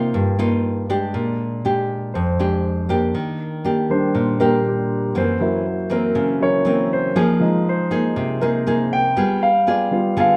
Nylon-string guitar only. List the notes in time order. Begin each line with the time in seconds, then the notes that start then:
Already playing: C3 A#3 D#4 F4
0.14 G2
0.39 A#3 D#4 F4
0.90 G#3 D4 G4
1.14 A#2
1.65 G#3 D4 G4
2.15 F2
2.40 G#3 D4 G4
2.89 A#3 D4 G4
3.15 D#3
3.65 A#3 D4 G4
4.15 A#2
4.40 A#3 D4 G4
5.15 F#2 E3 A#3 C4
5.90 E3 A#3 C4
6.15 C#3
6.65 E3 A#3 C4
7.16 F3 A#3 D#4 G#4
7.91 A#3 D#4 G#4
8.16 C3
8.41 A#3 D#4 G#4
8.67 A#3 D#4 G#4
9.16 G3 B3 F4 G#4
9.67 B3 F4 G#4
10.17 D3 B3 F4 G#4